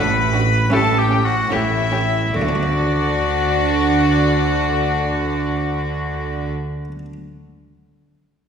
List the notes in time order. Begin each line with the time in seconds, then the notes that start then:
Already playing: A1 A2 D4 F#4 B4 B5
0.33 D4 F#4
0.70 A1 A2 C#4 E4 G4 A4 A5
0.98 G4 G5
1.09 C#4 G4
1.25 F#4 F#5
1.50 A1 A2 C#4 E4 G4 E5
1.91 C#4 G4
2.34 D2 D3 D4 F#4 D5
2.42 A3
2.49 D4
2.55 F#4
2.63 D5